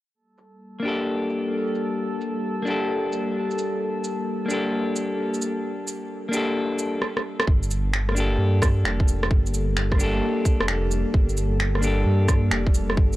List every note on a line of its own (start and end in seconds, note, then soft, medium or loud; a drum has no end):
0.14 6.98 G3 medium
0.14 6.98 A#3 medium
0.14 6.98 A4 medium
0.14 7.02 A4 medium
0.38 shaker medium
0.80 2.61 A#3 medium
0.80 2.64 D4 medium
0.80 shaker medium
0.85 2.66 G4 medium
0.85 2.67 A4 medium
1.29 shaker medium
1.67 shaker soft
1.75 shaker medium
2.21 shaker medium
2.63 4.45 A#3 medium
2.63 4.47 D4 medium
2.67 4.49 G4 medium
2.67 4.50 A4 medium
2.67 shaker medium
3.12 shaker medium
3.51 shaker soft
3.58 shaker medium
4.04 shaker medium
4.46 6.27 A#3 medium
4.46 6.30 D4 medium
4.50 6.32 G4 medium
4.50 6.33 A4 medium
4.50 shaker medium
4.96 shaker medium
5.34 shaker soft
5.42 shaker medium
5.87 shaker medium
6.29 7.00 A#3 medium
6.29 7.01 D4 medium
6.33 7.02 G4 medium
6.33 7.04 A4 loud
6.33 shaker medium
6.79 shaker soft
7.02 cross-stick medium
7.17 cross-stick medium
7.40 cross-stick medium
7.47 8.38 G1 medium
7.47 13.16 G3 medium
7.47 13.16 A#3 medium
7.47 13.16 A4 medium
7.47 kick loud
7.63 shaker soft
7.71 shaker medium
7.94 finger snap loud
8.09 9.94 A#3 medium
8.09 cross-stick medium
8.15 9.97 D4 medium
8.15 9.98 G4 medium
8.15 shaker medium
8.20 10.00 A4 medium
8.39 8.84 G2 medium
8.62 kick loud
8.62 cross-stick medium
8.62 shaker medium
8.85 9.07 F1 medium
8.85 finger snap loud
9.00 kick loud
9.08 9.30 F1 medium
9.08 shaker medium
9.23 cross-stick medium
9.30 10.21 G1 medium
9.30 kick loud
9.46 shaker soft
9.54 shaker medium
9.77 finger snap loud
9.92 11.78 A#3 medium
9.92 kick loud
9.92 cross-stick soft
9.98 11.80 D4 medium
9.98 11.81 G4 medium
9.98 shaker medium
10.03 11.83 A4 loud
10.45 kick loud
10.45 shaker medium
10.60 11.04 F1 loud
10.60 cross-stick medium
10.68 finger snap loud
10.91 shaker medium
11.14 12.05 G1 medium
11.14 kick loud
11.29 shaker soft
11.37 shaker medium
11.60 finger snap loud
11.75 13.16 A#3 medium
11.75 cross-stick soft
11.81 13.16 D4 medium
11.81 13.16 G4 medium
11.81 shaker medium
11.87 13.16 A4 medium
12.06 12.51 G2 medium
12.28 kick loud
12.28 cross-stick medium
12.28 shaker medium
12.51 12.73 F1 medium
12.51 finger snap loud
12.67 kick loud
12.74 12.96 F1 medium
12.74 shaker medium
12.90 cross-stick medium
12.97 13.16 G1 medium
12.97 kick loud
13.13 shaker soft